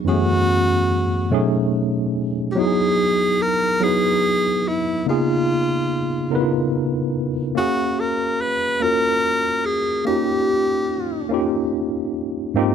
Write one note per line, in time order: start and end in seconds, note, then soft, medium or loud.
0.04 0.95 F#2 medium
0.04 0.95 E3 medium
0.04 0.12 G#3 medium
0.04 0.96 B3 medium
0.04 0.96 C#4 medium
0.04 1.69 F#4 loud
0.09 0.99 A3 medium
0.09 0.97 G#4 medium
1.30 2.20 B2 medium
1.30 2.20 F#3 medium
1.30 2.21 A3 medium
1.30 2.21 C#4 medium
1.30 2.22 D#4 medium
1.34 2.22 G#4 loud
2.51 2.60 G4 medium
2.56 3.45 F#3 medium
2.56 3.46 B3 medium
2.56 3.46 D#4 medium
2.56 3.47 E4 medium
2.56 3.43 G#4 loud
2.60 2.64 F#4 medium
2.67 3.51 G#4 medium
3.42 3.84 A#4 loud
3.80 4.70 F#3 medium
3.80 4.70 B3 medium
3.80 4.71 D#4 medium
3.80 4.72 E4 medium
3.80 4.69 G#4 loud
3.85 4.72 B4 medium
4.68 5.07 E4 loud
5.06 5.95 C#3 medium
5.06 5.95 A#3 medium
5.06 5.96 B3 medium
5.06 5.96 D#4 medium
5.06 6.70 F4 loud
5.06 5.97 F4 medium
5.10 5.98 G#4 medium
6.30 7.20 C#3 medium
6.30 7.21 B3 medium
6.30 7.22 D#4 medium
6.30 6.39 E4 medium
6.30 7.21 A#4 medium
6.35 7.22 B4 medium
6.40 7.25 F4 medium
7.55 8.45 A#3 medium
7.55 8.45 C#4 medium
7.55 8.01 F#4 loud
7.55 8.47 F#4 medium
7.55 8.46 F5 medium
7.60 8.47 G#4 medium
8.00 8.42 A#4 loud
8.41 8.84 B4 loud
8.80 9.70 A#3 medium
8.80 9.71 C#4 medium
8.80 9.71 F4 medium
8.80 9.72 F#4 medium
8.80 9.67 A#4 loud
8.85 9.72 A#4 medium
9.65 10.06 G#4 loud
10.05 10.95 A#3 medium
10.05 10.96 C#4 medium
10.05 10.96 D#4 medium
10.05 10.97 F4 medium
10.05 11.27 G4 loud
10.10 10.14 F#4 medium
10.16 11.00 G4 medium
11.29 12.19 A#3 medium
11.29 12.20 C#4 medium
11.29 12.21 D#4 medium
11.29 12.21 F4 medium
11.34 12.22 G4 medium
12.54 12.75 G#2 medium
12.54 12.75 A#3 medium
12.54 12.75 C4 medium
12.54 12.75 D#4 loud
12.54 12.75 F4 medium
12.59 12.75 G4 loud